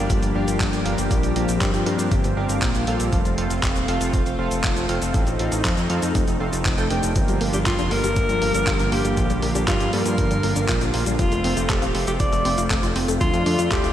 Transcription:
Already playing: F3 G3 A#3 D4 G4
0.10 G1, kick, closed hi-hat, cabasa
0.23 G1, closed hi-hat, cabasa
0.35 G1 D4 G4 A#4 F5
0.48 G1, closed hi-hat, cabasa
0.60 G1, kick, clap, closed hi-hat, cabasa
0.73 G1, closed hi-hat, cabasa
0.85 G1 D4 G4 A#4 F5, closed hi-hat
0.98 G1, closed hi-hat, cabasa
1.11 A#1 C4, kick, closed hi-hat, cabasa
1.23 A#1, closed hi-hat, cabasa
1.36 A#1 D4 G4 A#4 F5, closed hi-hat
1.49 A#1, closed hi-hat, cabasa
1.61 G2, kick, clap, closed hi-hat, cabasa
1.74 G2, closed hi-hat, cabasa
1.86 G2 D4 G4 A#4 F5, closed hi-hat
1.99 G2, closed hi-hat, cabasa
2.12 G1, kick, closed hi-hat, cabasa
2.24 G1, closed hi-hat, cabasa
2.37 G1 D4 G4 A#4 F5
2.49 G1, closed hi-hat, cabasa
2.62 A#1, kick, clap, closed hi-hat, cabasa
2.75 A#1, closed hi-hat, cabasa
2.87 A#1 C4 F4 A4 F5, closed hi-hat
3.00 A#1, closed hi-hat, cabasa
3.12 F1 A3 C4 F4, kick, closed hi-hat, cabasa
3.25 F1, closed hi-hat, cabasa
3.38 F1 C4 F4 A4 F5, closed hi-hat
3.50 F1, closed hi-hat, cabasa
3.63 F1, kick, clap, closed hi-hat, cabasa
3.76 D#1, closed hi-hat, cabasa
3.88 F1 C4 F4 A4 F5, closed hi-hat
4.01 F1, closed hi-hat, cabasa
4.13 F1, kick, closed hi-hat, cabasa
4.26 F1, closed hi-hat, cabasa
4.39 F1 C4 F4 A4 F5
4.51 F1, closed hi-hat, cabasa
4.64 F1, kick, clap, closed hi-hat, cabasa
4.76 F1, closed hi-hat, cabasa
4.89 F1 C4 F4 A4 F5, closed hi-hat
5.02 F1, closed hi-hat, cabasa
5.14 A1 D#4, kick, closed hi-hat, cabasa
5.27 A1, closed hi-hat, cabasa
5.39 A1 C4 F4 A4 F5, closed hi-hat
5.52 A1, closed hi-hat, cabasa
5.65 F2, kick, clap, closed hi-hat, cabasa
5.77 F2, closed hi-hat, cabasa
5.90 F2 C4 F4 A4 F5, closed hi-hat
6.02 F2, closed hi-hat, cabasa
6.15 F1, kick, closed hi-hat, cabasa
6.28 F1, closed hi-hat, cabasa
6.40 F1 C4 F4 A4 F5
6.53 F1, closed hi-hat, cabasa
6.65 F1, kick, clap, closed hi-hat, cabasa
6.78 F1 C4 F4 A4 G5, closed hi-hat, cabasa
6.90 F1 D4 G4 A#4 G5, closed hi-hat
7.03 F1, closed hi-hat, cabasa
7.16 G1 D3 F3 G3 A#3 F4, kick, closed hi-hat, cabasa
7.28 G1 G3, closed hi-hat, cabasa
7.41 G1 A#3, open hi-hat
7.53 G1 D4 G4, closed hi-hat, cabasa
7.66 G1 F4, kick, clap, closed hi-hat, cabasa
7.79 F1 D4, closed hi-hat, cabasa
7.91 G1 A#3 A#4, open hi-hat
8.04 G1 G3, closed hi-hat, cabasa
8.16 G1 F3, kick, closed hi-hat, cabasa
8.29 G1 G3, closed hi-hat, cabasa
8.42 G1 A#3, open hi-hat
8.54 G1 D4, closed hi-hat, cabasa
8.67 G1 F4, kick, clap, closed hi-hat, cabasa
8.79 G1 D4, closed hi-hat, cabasa
8.92 G1 A#3 G4, open hi-hat
9.05 G1 G3, closed hi-hat, cabasa
9.17 A#1 F3, kick, closed hi-hat, cabasa
9.30 A#1 G3, closed hi-hat, cabasa
9.42 A#1 A#3, open hi-hat
9.55 A#1 D4 G4, closed hi-hat, cabasa
9.68 G2 F4, kick, clap, closed hi-hat, cabasa
9.80 G2 D4, closed hi-hat, cabasa
9.93 G2 A#3 A#4, open hi-hat
10.06 G2 G3, closed hi-hat, cabasa
10.18 G1 F3, kick, closed hi-hat, cabasa
10.31 G1 G3, closed hi-hat, cabasa
10.43 G1 A#3, open hi-hat
10.56 G1 D4, closed hi-hat, cabasa
10.69 A#1 F4, kick, clap, closed hi-hat, cabasa
10.81 A#1 D4, closed hi-hat, cabasa
10.94 A#1 A#3, open hi-hat
11.06 A#1 G3, closed hi-hat, cabasa
11.19 F1 F3 A3 C4 F4, kick, closed hi-hat, cabasa
11.32 F1 A3, closed hi-hat, cabasa
11.44 F1 C4, open hi-hat
11.57 F1 F4, closed hi-hat, cabasa
11.69 F1 G4 A4, kick, clap, closed hi-hat, cabasa
11.82 D#1 F4, closed hi-hat, cabasa
11.95 F1 C4, open hi-hat
12.07 F1 A3 G4, closed hi-hat, cabasa
12.20 F1 F3 D5, kick, closed hi-hat, cabasa
12.33 F1 A3, closed hi-hat, cabasa
12.45 F1 C4, open hi-hat
12.58 F1 F4, closed hi-hat, cabasa
12.70 F1 A4, kick, clap, closed hi-hat, cabasa
12.83 F1 F4, closed hi-hat, cabasa
12.96 F1 C4, open hi-hat
13.08 F1 A3, closed hi-hat, cabasa
13.21 D2 F3 A3 D4 F4, kick, closed hi-hat, cabasa
13.34 F2 A3, closed hi-hat, cabasa
13.46 F2 D4, open hi-hat
13.59 F2 F4, closed hi-hat, cabasa
13.71 D1 G4 A4, kick, clap, closed hi-hat, cabasa
13.84 D1 F4, closed hi-hat, cabasa

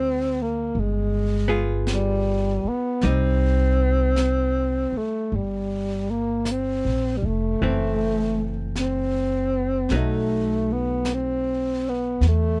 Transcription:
Already playing: D2 D3 G#3 C4 F4
0.42 A#3
0.74 G1, brush sweep
0.80 G#3
1.48 B3 F4 G#4
1.87 brush sweep, snare, hi-hat pedal
1.94 G3
2.64 muted upright bass stroke
2.69 B3
3.01 C2 G3 D#4, brush sweep, snare
3.06 C4
4.16 brush sweep, snare, hi-hat pedal
4.92 muted upright bass stroke
4.97 A3
5.31 G1, brush sweep
5.36 G3
6.10 A#3
6.45 brush sweep, snare, hi-hat pedal
6.51 C4
6.85 A#1
7.17 G3
7.22 F1 A3
7.61 F#1 E3 A3 C4, brush sweep
8.76 brush sweep, snare, hi-hat pedal
8.80 C4
9.89 B1 F#3 A3, brush sweep, snare
9.94 A3 D#4
10.73 B3
11.05 brush sweep, snare, hi-hat pedal
11.14 C4
11.89 B3
12.21 E2, brush sweep, snare
12.28 A3

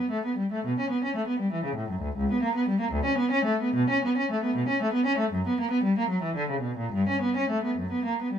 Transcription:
0.11 A3
0.25 B3
0.37 G3
0.52 A3
0.65 B2
0.79 C#4
0.90 B3
1.04 C#4
1.16 A3
1.27 B3
1.39 G3
1.52 E3
1.65 C#3
1.76 A2
1.89 F#2
2.02 D2
2.16 C#2
2.31 B3
2.43 A#3
2.55 B3
2.69 G3
2.80 A#3
2.92 D2
3.05 C#4
3.18 B3
3.31 C#4
3.45 A3
3.62 B3
3.74 B2
3.90 C#4
4.04 B3
4.17 C#4
4.31 A3
4.43 B3
4.56 B2
4.68 C#4
4.82 A3
4.93 B3
5.06 C#4
5.18 A3
5.31 F#2
5.47 B3
5.60 A#3
5.71 B3
5.83 G3
5.98 A#3
6.09 F#3
6.23 E3
6.36 D3
6.50 C#3
6.61 B2
6.78 A#2
6.93 G2
7.08 C#4
7.22 B3
7.36 C#4
7.50 A3
7.64 B3
7.78 F#2
7.92 B3
8.05 A#3
8.22 B3
8.33 G3

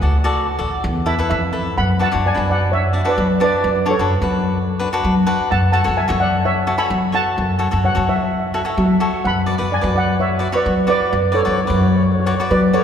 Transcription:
Already playing: F#5
0.01 D2 F#4 A4 D5
0.24 F#4 A4 D5
0.59 A1 F#4 A4 D5
0.84 E2
1.06 E4 A4 B4 E5
1.19 E4 A4 B4
1.30 F2 E5
1.53 E4 A4 B4
1.78 F#2 F#5 B5
1.99 D4 F#4 B4 F#5 A5
2.12 F#2 D4 F#4 C#5
2.26 D5 G#5
2.34 F#2 D4 F#4 B4
2.50 D5 F#5
2.72 C#5 E5
2.93 D4 F#4 D5
3.05 D4 F#4 B4
3.09 D5
3.18 F#3
3.40 D4 F#4 B4 D5
3.64 F#2
3.86 D4 F#4 A4 C#5
3.91 C#5
3.99 F#2 D4 F#4 B4
4.22 F#2 D4 F#4 B4
4.79 D4 F#4 B4
4.93 D4 F#4 B4
5.04 F#3
5.26 D4 F#4 B4
5.51 F#2 F#5 A5
5.72 F#4 A4 C#5 F#5 A5
5.84 F#2 F#4 A4 C#5
5.97 E5 G#5
6.08 F#2 F#4 A4 C#5
6.20 D5 F#5
6.45 C#5 E5
6.67 F#4 A4 C#5
6.78 F#4 A4 C#5 G#5 B5
6.90 F#3
7.12 F#4 A4 C#5 F#5 A5
7.38 F#2
7.59 F#4 A4 C#5
7.71 F#2 F#4 A4 C#5
7.85 C#5 F#5
7.95 F#2 F#4 A4 C#5
8.09 C#5 E5
8.16 E5
8.23 E5
8.31 E5
8.40 E5
8.47 E5
8.54 F#4 A4 C#5 E5
8.62 F#4 A4 C#5 E5
8.70 E5
8.78 F#3 E5
8.85 E5
9.00 F#4 A4 C#5
9.25 F#2 F#5 B5
9.46 F#4 B4 D5
9.58 F#2 F#4 B4 D5
9.72 D5 G#5
9.81 F#2 F#4 B4 D5
9.95 D5 F#5
10.20 C#5 E5
10.39 F#4 B4 D5
10.52 F#4 B4 C#5 D5
10.66 F#3
10.87 F#4 B4 D5
11.13 F#2
11.32 F#4 A4 B4 C#5 D5
11.43 F#2 F#4 B4 C#5 D5
11.51 C#5
11.58 C#5
11.65 F#4 B4 C#5 D5
11.70 F#2
11.75 C#5
11.82 C#5
11.88 C#5
11.96 C#5
12.03 C#5
12.11 C#5
12.19 C#5
12.26 F#4 B4 C#5 D5
12.35 C#5
12.40 F#4 B4 D5
12.51 F#3 B4 D5
12.73 F#4 A4 B4 C#5 D5

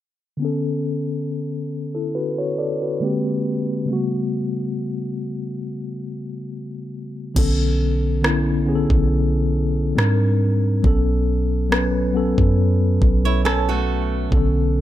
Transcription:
0.37 D3 B3
0.42 C#4 A4
1.95 E4 A4
2.15 F#4 B4
2.38 F#4 C#5
2.58 A4 D5
2.82 F#4 B4
3.00 D3 G#3 A#3 C4 G4
3.85 C#3 G3 A3
3.91 B3 F#4
7.35 B1 D3 B3 C#4 A4, kick, crash
8.22 D3 B3 C#4 E4, cross-stick
8.65 D3 B3 C#4 G#4
8.75 A4
8.90 B1, kick
9.95 G#2 G3 C4 D4 A#4, cross-stick
10.82 B1 F#3 B3 C#4 A4, kick
11.69 F#3 B3 C#4 B4, cross-stick
12.13 F#3 B3 C#4 A4
12.38 F#2, kick
13.02 B1, kick
13.25 E4 C#5
13.45 C#4 A4, cross-stick
13.69 A3 F#4
14.30 B1 D3 B3 C#4 A4, kick

